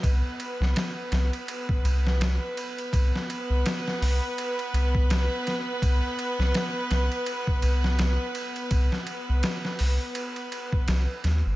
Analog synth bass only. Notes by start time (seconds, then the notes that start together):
0.04 C2
0.60 C2
1.12 C2
1.84 C2
2.19 C2
2.93 C2
3.50 C2
4.02 C2
4.73 C2
5.10 C2
5.82 C2
6.39 C2
6.91 C2
7.63 C2
8.00 C2
8.71 C2
9.29 C2
9.80 C2
10.88 C2
11.24 D#2
11.46 G1